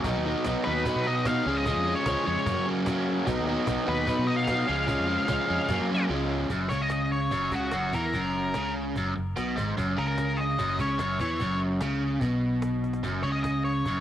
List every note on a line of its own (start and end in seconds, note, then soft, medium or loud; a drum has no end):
0.04 0.13 B1 loud
0.04 0.44 B2 medium
0.04 0.26 F#3 medium
0.04 0.25 B3 loud
0.04 0.24 D#4 loud
0.04 cajon bass loud
0.17 0.34 D#2 medium
0.25 0.45 F#3 medium
0.25 0.46 B3 medium
0.25 0.46 D#4 medium
0.44 0.54 B1 medium
0.44 0.84 B2 medium
0.44 0.67 F#3 medium
0.44 0.66 B3 medium
0.44 0.64 D#4 medium
0.44 cajon bass loud
0.44 cajon slap loud
0.64 0.84 D#2 medium
0.64 0.85 F#3 medium
0.64 0.86 B3 medium
0.64 0.87 D#4 medium
0.64 1.06 B4 medium
0.85 1.24 B2 loud
0.85 1.07 F#3 loud
0.85 1.07 B3 loud
0.85 1.05 D#4 loud
0.85 cajon bass loud
0.96 1.40 B2 medium
1.06 1.26 F#3 medium
1.06 1.26 B3 medium
1.06 1.27 D#4 medium
1.06 1.27 D#5 medium
1.25 1.44 B2 medium
1.25 1.45 F#3 medium
1.25 1.45 B3 medium
1.25 1.46 D#4 medium
1.25 1.57 F5 medium
1.25 cajon bass loud
1.25 cajon slap loud
1.46 1.73 C#2 loud
1.46 1.65 C#3 medium
1.46 1.66 F3 medium
1.46 1.66 G#3 medium
1.46 1.67 C#4 medium
1.57 1.95 D#5 loud
1.66 2.05 C#3 loud
1.66 1.88 F3 loud
1.66 1.86 G#3 loud
1.66 1.85 C#4 loud
1.66 cajon bass loud
1.76 1.94 F2 medium
1.86 2.05 F3 medium
1.86 2.06 G#3 medium
1.86 2.07 C#4 medium
1.95 2.26 C#5 medium
2.06 2.15 C#2 medium
2.06 2.45 C#3 medium
2.06 2.26 F3 medium
2.06 2.25 G#3 medium
2.06 2.24 C#4 medium
2.06 cajon bass loud
2.06 cajon slap loud
2.25 2.36 F2 medium
2.25 2.46 F3 medium
2.25 2.45 G#3 medium
2.25 2.45 C#4 medium
2.25 2.64 C#5 medium
2.46 2.55 F#2 loud
2.46 2.87 F#2 loud
2.46 2.85 C#3 loud
2.46 2.68 F#3 loud
2.46 2.66 A#3 loud
2.46 2.65 C#4 loud
2.46 cajon bass loud
2.59 3.20 F#3 medium
2.66 2.86 F#3 medium
2.66 2.88 A#3 medium
2.66 2.88 C#4 medium
2.86 3.25 C#3 medium
2.86 3.25 F#3 medium
2.86 3.27 A#3 medium
2.86 3.27 C#4 medium
2.86 cajon bass loud
2.86 cajon slap loud
3.25 3.36 B1 loud
3.25 3.65 B2 loud
3.25 3.48 F#3 loud
3.25 3.47 B3 loud
3.25 3.46 D#4 loud
3.25 cajon bass loud
3.39 3.56 D#2 medium
3.47 3.66 F#3 medium
3.47 3.67 B3 medium
3.47 3.68 D#4 medium
3.66 3.76 B1 medium
3.66 4.05 B2 medium
3.66 3.87 F#3 medium
3.66 3.85 B3 medium
3.66 3.84 D#4 medium
3.66 cajon bass loud
3.66 cajon slap loud
3.85 4.05 D#2 medium
3.85 4.06 F#3 medium
3.85 4.06 B3 medium
3.85 4.08 D#4 medium
3.85 4.26 B4 medium
4.06 4.46 B2 loud
4.06 4.27 F#3 loud
4.06 4.26 B3 loud
4.06 4.25 D#4 loud
4.06 cajon bass loud
4.19 4.63 B2 medium
4.26 4.47 F#3 medium
4.26 4.48 B3 medium
4.26 4.49 D#4 medium
4.26 4.36 D#5 medium
4.36 4.44 F5 medium
4.45 4.67 B2 medium
4.45 4.67 F#3 medium
4.45 6.04 F5 medium
4.45 cajon bass loud
4.45 cajon slap loud
4.50 4.68 B3 medium
4.50 4.67 D#4 medium
4.68 4.95 C#2 loud
4.68 4.86 C#3 medium
4.68 4.87 F3 medium
4.68 4.87 G#3 medium
4.68 4.88 C#4 medium
4.87 5.26 C#3 loud
4.87 5.09 F3 loud
4.87 5.07 G#3 loud
4.87 5.05 C#4 loud
4.87 cajon bass loud
4.99 5.17 F2 medium
5.07 5.27 F3 medium
5.07 5.28 G#3 medium
5.07 5.29 C#4 medium
5.27 5.37 C#2 medium
5.27 5.67 C#3 medium
5.27 5.50 F3 medium
5.27 5.49 G#3 medium
5.27 5.47 C#4 medium
5.27 cajon bass loud
5.27 cajon slap loud
5.48 5.59 F2 medium
5.48 5.69 F3 medium
5.48 5.68 G#3 medium
5.48 5.68 C#4 medium
5.68 6.08 F#2 medium
5.68 5.78 F#2 loud
5.68 6.07 C#3 medium
5.68 5.93 F#3 loud
5.68 5.91 A#3 loud
5.68 5.89 C#4 loud
5.68 cajon bass loud
5.81 6.07 F#3 medium
5.90 6.10 F#3 medium
5.90 6.10 A#3 medium
5.90 6.09 C#4 medium
6.08 6.45 C#2 loud
6.08 6.49 C#3 loud
6.08 6.50 F3 loud
6.08 6.50 G#3 loud
6.08 6.50 C#4 loud
6.50 6.69 F#1 medium
6.50 6.70 F#2 medium
6.50 cajon bass medium
6.69 7.28 C#2 medium
6.69 7.31 C#3 medium
6.69 6.81 C#5 medium
6.69 cajon bass medium
6.81 6.91 D#5 medium
6.90 7.12 D#5 medium
6.90 cajon slap medium
7.10 7.54 C#5 medium
7.10 cajon slap soft
7.31 7.51 F#1 medium
7.31 7.51 F#2 medium
7.31 cajon bass medium
7.51 7.71 C#2 medium
7.51 7.73 C#3 medium
7.51 7.94 F#4 medium
7.51 cajon bass medium
7.71 7.92 F#1 medium
7.71 7.93 F#2 medium
7.71 cajon slap loud
7.93 8.12 E2 medium
7.93 8.13 E3 medium
7.93 8.72 A#4 medium
7.93 cajon bass loud
8.13 8.52 F#1 medium
8.13 8.54 F#2 medium
8.13 cajon bass medium
8.35 cajon slap soft
8.54 8.93 C#2 medium
8.54 8.95 C#3 medium
8.54 cajon slap loud
8.75 cajon slap soft
8.96 9.15 F#1 medium
8.96 9.14 F#2 medium
8.96 cajon bass medium
9.16 9.36 F#1 medium
9.16 9.32 F#2 medium
9.16 cajon slap soft
9.36 9.56 B1 medium
9.36 9.56 B2 medium
9.36 cajon slap medium
9.56 9.76 G#1 medium
9.56 9.76 G#2 loud
9.56 cajon bass medium
9.77 9.97 F#1 medium
9.77 9.97 F#2 loud
9.77 cajon bass medium
9.97 10.55 C#2 medium
9.97 10.58 C#3 medium
9.97 10.06 A#4 medium
10.07 10.39 A#4 medium
10.18 cajon slap medium
10.37 10.80 D#5 medium
10.37 cajon slap soft
10.58 10.78 F#1 medium
10.58 10.78 F#2 loud
10.58 cajon bass medium
10.79 10.99 C#2 medium
10.79 10.99 C#3 medium
10.79 11.19 C#5 medium
10.79 cajon bass medium
10.98 11.20 F#1 medium
10.98 11.19 F#2 medium
10.98 cajon slap medium
11.20 11.39 E2 medium
11.20 11.40 E3 loud
11.20 11.58 C#5 medium
11.20 cajon bass medium
11.40 11.78 F#1 medium
11.40 11.81 F#2 medium
11.40 cajon bass medium
11.61 cajon slap soft
11.81 12.19 C#2 medium
11.81 12.22 C#3 loud
11.81 cajon slap loud
12.01 cajon slap soft
12.21 13.00 B1 medium
12.21 13.03 B2 medium
12.21 cajon bass medium
12.42 cajon slap soft
12.62 cajon slap medium
12.73 cajon slap soft
12.84 cajon slap soft
12.93 cajon slap medium
13.03 13.23 F#1 medium
13.03 13.23 F#2 medium
13.03 cajon bass medium
13.23 13.81 C#2 medium
13.23 13.85 C#3 medium
13.23 13.28 C#5 medium
13.23 cajon slap soft
13.32 13.42 D#5 medium
13.43 13.63 D#5 medium
13.43 cajon bass medium
13.43 cajon slap medium
13.65 14.00 C#5 medium
13.65 cajon slap soft
13.85 14.00 F#1 medium
13.85 14.00 F#2 medium
13.85 cajon bass medium